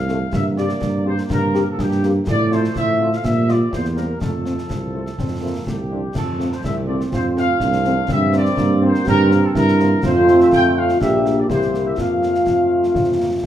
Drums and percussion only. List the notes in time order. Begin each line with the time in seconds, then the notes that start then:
0.08 snare
0.33 concert bass drum, snare
0.57 snare
0.69 snare
0.82 concert bass drum, snare
1.18 snare
1.30 concert bass drum, snare
1.54 snare
1.79 concert bass drum, snare
1.91 snare
2.03 snare
2.27 concert bass drum, snare, crash
2.52 snare
2.64 snare
2.76 concert bass drum, snare
3.13 snare
3.25 concert bass drum, snare
3.49 snare
3.73 concert bass drum, snare
3.85 snare
3.97 snare
4.21 concert bass drum, snare
4.45 snare
4.58 snare
4.70 concert bass drum, snare
5.06 snare
5.19 concert bass drum, snare
5.67 concert bass drum, snare
6.15 concert bass drum, snare, crash
6.40 snare
6.52 snare
6.64 concert bass drum, snare
7.01 snare
7.13 concert bass drum, snare
7.37 snare
7.60 concert bass drum, snare
7.72 snare
7.84 snare
8.08 concert bass drum, snare
8.33 snare
8.45 snare
8.57 concert bass drum, snare
8.94 snare
9.07 concert bass drum, snare
9.31 snare
9.55 concert bass drum, snare
9.68 snare
9.79 snare
10.03 concert bass drum, snare, crash
10.27 snare
10.40 snare
10.52 concert bass drum, snare
10.89 snare
11.01 concert bass drum, snare
11.26 snare
11.50 concert bass drum, snare
11.61 snare
11.74 snare
11.98 concert bass drum, snare
12.22 snare
12.34 snare
12.47 concert bass drum, snare
12.83 snare
12.95 concert bass drum, snare